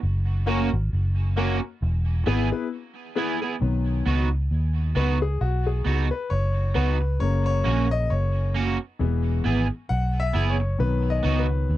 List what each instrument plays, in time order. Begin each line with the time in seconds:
0.03 fingered electric bass F#1
0.46 grand piano A#3 C#4 F#4 A#4, clean electric guitar A#3 C#4 F#4
0.74 fingered electric bass G#1
0.93 fingered electric bass F#1
1.36 grand piano A#3 C#4 F#4 A#4, clean electric guitar A#3 C#4 F#4
1.82 fingered electric bass E1
2.26 fingered electric bass G#1, clean electric guitar B3 E4 G#4, grand piano B3 E4 G#4 B4
2.51 grand piano B3 E4 G#4 B4
3.15 grand piano B3 E4 G#4 B4, clean electric guitar B3 E4 G#4
3.42 clean electric guitar B3 E4 G#4, grand piano G#4 B4
3.61 fingered electric bass B1, grand piano D#3 F#3 B3
4.06 fingered electric bass C#2, clean electric guitar B3 D#4 F#4
4.51 fingered electric bass D#2
4.95 fingered electric bass C#2, clean electric guitar B3 D#4 F#4, grand piano B4
5.22 grand piano G#4
5.41 fingered electric bass B1, grand piano F#4
5.67 grand piano G#4
5.85 fingered electric bass C#2, clean electric guitar B3 D#4 F#4
6.11 grand piano B4
6.30 fingered electric bass F#1, grand piano C#5
6.74 fingered electric bass C#2, clean electric guitar B3 D#4 F#4, grand piano B4
7.01 muted clean electric guitar stroke
7.19 fingered electric bass F#1, grand piano C#3 F#3 A#3 C#5
7.46 grand piano C#5
7.64 fingered electric bass A#1, clean electric guitar A#3 C#4 F#4
7.91 grand piano D#5
8.10 fingered electric bass F#1, grand piano C#5
8.54 clean electric guitar A#3 C#4 F#4
8.99 fingered electric bass E1, grand piano E3 G#3 B3
9.44 fingered electric bass G#1, clean electric guitar B3 E4 G#4
9.89 fingered electric bass B1, grand piano F#5
10.20 grand piano E5
10.33 fingered electric bass F#1, clean electric guitar B3 E4 G#4
10.50 grand piano C#5
10.60 muted clean electric guitar stroke
10.78 fingered electric bass B1, grand piano D#3 F#3 B3 B4
11.10 grand piano D#5
11.23 fingered electric bass C#2, clean electric guitar B3 D#4 F#4
11.39 grand piano B4
11.70 fingered electric bass D#2